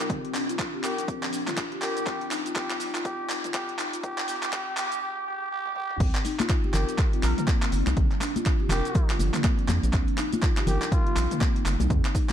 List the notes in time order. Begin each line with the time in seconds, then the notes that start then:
Already playing: C4
0.01 shaker
0.10 A#2 F3 C4 D4, kick, closed hi-hat, mid tom, shaker
0.25 closed hi-hat
0.34 D4, clap, open hi-hat, shaker
0.49 F4, closed hi-hat, shaker
0.59 D4, kick, clap, closed hi-hat, shaker
0.74 G4
0.83 G4 A#4, clap, open hi-hat, shaker
0.98 closed hi-hat, shaker
1.08 C4, kick, closed hi-hat, shaker
1.23 clap, open hi-hat
1.33 D4, open hi-hat, shaker
1.47 F4, clap, closed hi-hat, mid tom, shaker
1.57 D4, kick, clap, closed hi-hat, shaker
1.72 G4, closed hi-hat
1.82 G4 A#4, clap, open hi-hat, shaker
1.97 closed hi-hat, shaker
2.07 C3 G3 C4 D#4 G4, kick, clap, closed hi-hat, shaker
2.21 closed hi-hat
2.31 D#4, clap, open hi-hat, shaker
2.46 F4, closed hi-hat, shaker
2.56 G4, kick, clap, closed hi-hat, shaker
2.70 clap
2.80 D#4, open hi-hat, shaker
2.95 F4, clap, closed hi-hat, shaker
3.05 G4, kick, closed hi-hat, shaker
3.29 D#4, clap, open hi-hat, shaker
3.44 F4, closed hi-hat, mid tom, shaker
3.54 G4, kick, clap, closed hi-hat, shaker
3.69 closed hi-hat
3.79 D#4, clap, open hi-hat, shaker
3.93 F4, closed hi-hat, shaker
4.03 F3 G4 G#4, kick, closed hi-hat, mid tom, shaker
4.18 clap, closed hi-hat
4.28 C4 G4, open hi-hat, shaker
4.43 clap, closed hi-hat, shaker
4.53 G4, kick, clap, closed hi-hat, shaker
4.77 C4 G4, clap, open hi-hat, shaker
4.92 closed hi-hat, shaker
5.02 G4
5.26 G4
5.51 G4
5.66 high tom
5.75 G4, mid tom
5.90 mid tom
6.00 C2 C3 G3 C4 D#4, kick, closed hi-hat, crash, shaker
6.15 clap, closed hi-hat
6.25 D#4, open hi-hat, muted conga, shaker
6.39 F4, clap, closed hi-hat, high conga, shaker
6.49 kick, clap, closed hi-hat, shaker
6.64 G4, muted conga
6.74 G1 G4 A#4, clap, open hi-hat, low conga, shaker
6.89 closed hi-hat, shaker
6.98 kick, clap, closed hi-hat, muted conga, high conga, shaker
7.13 F4, closed hi-hat
7.23 A#1 A#4, clap, open hi-hat, shaker
7.38 A#3 A#4, closed hi-hat, mid tom, shaker
7.47 C4, kick, clap, closed hi-hat, muted conga, high conga, shaker
7.62 clap, closed hi-hat
7.72 G1, open hi-hat, shaker
7.87 C2, clap, closed hi-hat, muted conga, high conga, shaker
7.97 A#1 F3 A#3 C4 D4, kick, closed hi-hat, mid tom, shaker
8.11 clap, closed hi-hat
8.21 D4, clap, open hi-hat, muted conga, shaker
8.36 F4, closed hi-hat, high conga, shaker
8.46 kick, clap, closed hi-hat, shaker
8.60 G4, muted conga
8.69 F1 G4 A#4, clap, open hi-hat, low conga, shaker
8.85 closed hi-hat, shaker
8.95 kick, closed hi-hat, muted conga, low conga, shaker
9.10 F4, clap, open hi-hat
9.19 G1, open hi-hat, high conga, shaker
9.34 A#3, clap, closed hi-hat, mid tom, shaker
9.44 C4, kick, clap, closed hi-hat, muted conga, high conga, shaker
9.59 closed hi-hat
9.68 F2, clap, open hi-hat, high conga, low conga, shaker
9.83 A#1 D4, closed hi-hat, muted conga, shaker
9.93 C2 C3 G3 C4 D#4, kick, clap, closed hi-hat, shaker
10.08 closed hi-hat
10.18 D#4, clap, open hi-hat, muted conga, shaker
10.32 F4, closed hi-hat, high conga, shaker
10.42 D#4, kick, clap, closed hi-hat, shaker
10.57 G4, clap, muted conga
10.67 G1 G4 A#4, open hi-hat, low conga, shaker
10.82 clap, closed hi-hat, shaker
10.92 F4, kick, closed hi-hat, muted conga, high conga, shaker
11.06 F4, closed hi-hat
11.16 A#1, clap, open hi-hat, shaker
11.31 A#3, closed hi-hat, mid tom, shaker
11.41 C4, kick, clap, closed hi-hat, muted conga, high conga, shaker
11.56 closed hi-hat
11.65 G1, clap, open hi-hat, shaker
11.80 C2 D#4, closed hi-hat, muted conga, high conga, shaker
11.90 F2 F3 G#3 C4 G4, kick, closed hi-hat, mid tom, shaker
12.05 clap, closed hi-hat
12.15 D#4, kick, open hi-hat, muted conga, shaker